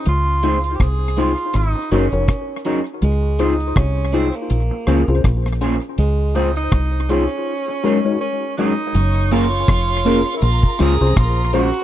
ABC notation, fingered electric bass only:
X:1
M:4/4
L:1/16
Q:"Swing 16ths" 1/4=81
K:Db
V:1 name="Fingered electric bass" clef=bass
D,,4 C,,3 z A,,, z G,,, F,,, z4 | D,,4 C,,3 z B,,, z D,, C,, B,,,3 z | D,,4 C,,3 z8 z | G,,,4 F,,,3 z B,,, z D,, C,, B,,,3 z |]